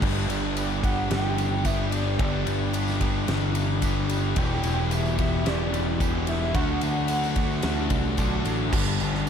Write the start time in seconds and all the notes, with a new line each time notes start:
Already playing: D4
0.00 G1 G2 D3 G3 B3 D4 G4, kick, crash
0.05 G3
0.27 G1 G3 B3 D4 G4, ride, tambourine
0.55 G3 B3 D4 G4, ride, tambourine
0.70 tambourine
0.82 G2 D3 G3 B3 D4 G4 F#5, kick, ride, tambourine
1.09 G1 G2 D3 G3 B3 D4 G4 F#5, snare, ride, tambourine
1.22 G5
1.37 G3 B3 D4 G4, ride, tambourine
1.64 G2 D3 G3 B3 D4 G4 E5, kick, ride, tambourine
1.92 G3 B3 D4 G4 D5, ride, tambourine
2.07 tambourine
2.18 G1 G2 D3 G3 B3 D4 G4, kick, ride
2.46 G1 G3 B3 D4 G4, ride, tambourine
2.73 G3 B3 D4 G4, ride, tambourine
2.88 snare, tambourine
2.99 D3 G3 B3 D4 G4, kick, ride
3.03 G2
3.27 G1 G2 D3 G3 B3 D4 G4, snare, ride, tambourine
3.54 G3 B3 D4 G4, ride, tambourine
3.82 G2 D3 G3 B3 D4 G4, kick, ride, tambourine
4.09 G3 B3 D4 G4, ride, tambourine
4.24 tambourine
4.36 E1 E2 B2 E3 G3 B3 E4 G4 G5, kick, ride
4.63 E1 E3 B3 E4 G4, ride, tambourine
4.90 E3 B3 E4 G4, ride, tambourine
4.95 E5
5.06 tambourine
5.19 E2 B2 E3 G3 B3 E4 G4, kick, ride, tambourine
5.44 E1 E2 B2 E3 B3 E4 G4, snare, ride, tambourine
5.49 D5
5.72 E3 B3 E4 G4, ride, tambourine
5.99 E2 B2 E3 G3 B3 E4 G4, kick, ride, tambourine
6.27 E3 B3 E4 G4 E5, ride
6.54 D2 D3 F#3 A3 D4 F#4 F#5, kick, ride, tambourine
6.81 D2 D3 F#3 A3 D4 F#4, ride, tambourine
6.97 tambourine
7.08 D3 F#3 A3 D4 F#4, ride, tambourine
7.23 snare, tambourine
7.36 D3 F#3 A3 D4 F#4, kick, ride, tambourine
7.51 tambourine
7.63 D2 D3 F#3 A3 D4 F#4, snare, ride
7.78 tambourine
7.90 C2 D3 F#3 A3 D4 F#4, kick, ride, tambourine
8.04 tambourine
8.17 B1 D3 F#3 A3 D4 F#4, kick, ride, tambourine
8.32 tambourine
8.44 A1 D3 F#3 A3 D4 F#4, ride, tambourine
8.71 G1 G2 D3 G3 B3 D4, kick, crash
9.00 G1 G2 D3 G3 B3 D4, tambourine
9.14 snare